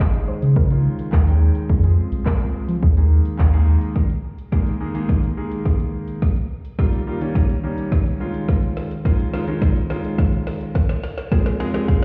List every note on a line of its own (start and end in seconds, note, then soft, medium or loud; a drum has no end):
0.00 0.28 G#1 medium
0.00 0.29 D#5 loud
0.00 kick loud
0.00 snare medium
0.00 clap loud
0.14 0.55 D#3 medium
0.14 0.55 G#3 medium
0.14 0.55 C#4 medium
0.14 0.55 G#4 medium
0.14 closed hi-hat medium
0.28 0.57 C5 loud
0.42 0.89 C#3 medium
0.42 closed hi-hat medium
0.56 1.15 A#4 loud
0.56 kick loud
0.70 1.12 D#3 medium
0.70 1.12 G#3 medium
0.70 1.12 C#4 medium
0.70 1.12 F4 medium
0.70 closed hi-hat medium
0.99 closed hi-hat medium
1.13 1.50 D#2 medium
1.13 1.68 G#4 medium
1.13 kick loud
1.13 snare medium
1.13 clap loud
1.27 1.68 D#3 medium
1.27 1.68 G#3 medium
1.27 1.68 C#4 medium
1.27 1.68 G5 medium
1.27 closed hi-hat medium
1.55 closed hi-hat medium
1.70 1.97 F2 loud
1.70 2.28 G#4 medium
1.70 kick loud
1.83 2.25 F3 medium
1.83 2.25 G#3 medium
1.83 2.25 C4 medium
1.83 2.25 G#4 medium
1.83 closed hi-hat soft
2.12 2.21 C2 medium
2.12 closed hi-hat medium
2.26 2.54 C2 medium
2.26 2.84 A#4 medium
2.26 kick loud
2.26 snare medium
2.26 clap loud
2.40 2.81 F3 medium
2.40 2.82 G#3 medium
2.40 2.82 C4 medium
2.40 2.82 G#4 medium
2.40 closed hi-hat medium
2.69 2.78 F3 medium
2.69 closed hi-hat medium
2.83 3.20 D#2 loud
2.83 3.64 G#4 medium
2.83 kick loud
2.97 3.38 D#3 medium
2.97 3.38 G#3 medium
2.97 3.38 A#3 medium
2.97 3.38 G#4 medium
2.97 closed hi-hat medium
3.25 closed hi-hat medium
3.39 3.77 D#2 medium
3.39 kick loud
3.39 snare medium
3.39 clap loud
3.53 3.94 D#3 loud
3.53 3.95 G#3 medium
3.53 3.95 A#3 medium
3.53 3.95 G#4 loud
3.53 closed hi-hat medium
3.81 closed hi-hat medium
3.96 kick loud
3.96 snare medium
4.10 closed hi-hat soft
4.38 closed hi-hat medium
4.52 4.73 D#3 medium
4.52 4.73 G#3 medium
4.52 4.73 A#3 medium
4.52 4.73 G#4 loud
4.52 kick loud
4.52 snare medium
4.67 closed hi-hat medium
4.80 4.91 D#3 medium
4.80 4.91 G#3 medium
4.80 4.91 A#3 medium
4.80 4.91 G#4 loud
4.94 5.26 D#3 loud
4.94 5.26 G#3 medium
4.94 5.26 A#3 medium
4.94 5.26 G#4 loud
4.94 closed hi-hat medium
5.09 kick loud
5.09 snare medium
5.23 closed hi-hat medium
5.37 6.20 D#3 medium
5.37 6.20 G#3 medium
5.37 6.20 A#3 medium
5.37 6.20 G#4 medium
5.52 closed hi-hat medium
5.65 kick loud
5.65 snare medium
5.80 closed hi-hat medium
6.08 closed hi-hat medium
6.22 kick loud
6.22 snare medium
6.36 closed hi-hat soft
6.65 closed hi-hat medium
6.79 6.99 D#3 medium
6.79 6.99 G3 medium
6.79 7.00 A#3 medium
6.79 7.00 F4 loud
6.79 kick loud
6.79 snare medium
6.93 closed hi-hat medium
7.07 7.17 D#3 medium
7.07 7.18 G3 medium
7.07 7.18 A#3 medium
7.07 7.18 F4 loud
7.21 7.52 D#3 loud
7.21 7.52 G3 medium
7.21 7.52 A#3 medium
7.21 7.52 C#4 loud
7.21 closed hi-hat medium
7.35 kick loud
7.35 snare medium
7.50 closed hi-hat medium
7.63 8.19 D#3 medium
7.63 8.20 G3 medium
7.63 8.20 A#3 medium
7.63 8.19 C#4 loud
7.78 closed hi-hat medium
7.92 kick loud
7.92 snare medium
8.06 closed hi-hat medium
8.20 8.88 D#3 medium
8.20 8.88 G#3 medium
8.20 8.88 C#4 medium
8.20 8.88 F4 loud
8.34 closed hi-hat medium
8.49 kick loud
8.49 snare medium
8.63 closed hi-hat medium
8.77 snare medium
8.77 open hi-hat medium
8.91 closed hi-hat medium
9.05 9.26 D#3 medium
9.05 9.26 G#3 medium
9.05 9.26 C#4 medium
9.05 9.26 F4 loud
9.05 kick loud
9.05 snare medium
9.19 closed hi-hat medium
9.33 9.44 D#3 loud
9.33 9.44 G#3 medium
9.33 9.44 C#4 medium
9.33 9.44 F4 loud
9.33 snare medium
9.33 open hi-hat medium
9.48 9.79 D#3 loud
9.48 9.79 G#3 medium
9.48 9.79 C#4 medium
9.48 9.79 F4 loud
9.48 closed hi-hat medium
9.62 kick loud
9.62 snare loud
9.76 closed hi-hat medium
9.90 10.73 D#3 medium
9.90 10.73 G#3 medium
9.90 10.73 C#4 medium
9.90 10.73 F4 loud
9.90 snare medium
9.90 open hi-hat medium
10.04 closed hi-hat medium
10.18 kick loud
10.18 snare loud
10.33 closed hi-hat medium
10.47 snare loud
10.47 open hi-hat medium
10.61 closed hi-hat medium
10.75 kick loud
10.75 snare loud
10.75 shaker medium
10.89 snare loud
10.89 closed hi-hat medium
10.89 shaker medium
11.03 snare loud
11.03 open hi-hat medium
11.03 shaker medium
11.18 snare loud
11.18 closed hi-hat medium
11.18 shaker medium
11.31 11.52 F3 loud
11.31 11.52 G#3 medium
11.31 11.52 C4 medium
11.31 11.53 G#4 loud
11.31 kick loud
11.31 snare loud
11.31 shaker medium
11.46 snare loud
11.46 closed hi-hat medium
11.46 shaker medium
11.60 11.70 F3 loud
11.60 11.70 G#3 medium
11.60 11.70 C4 medium
11.60 11.71 G#4 loud
11.60 11.86 D#5 medium
11.60 snare loud
11.60 open hi-hat medium
11.60 shaker medium
11.74 12.05 F3 loud
11.74 12.05 G#3 loud
11.74 12.05 C4 loud
11.74 12.05 G#4 loud
11.74 snare loud
11.74 closed hi-hat medium
11.74 shaker medium
11.88 12.05 F5 medium
11.88 kick loud
11.88 snare loud
11.88 shaker medium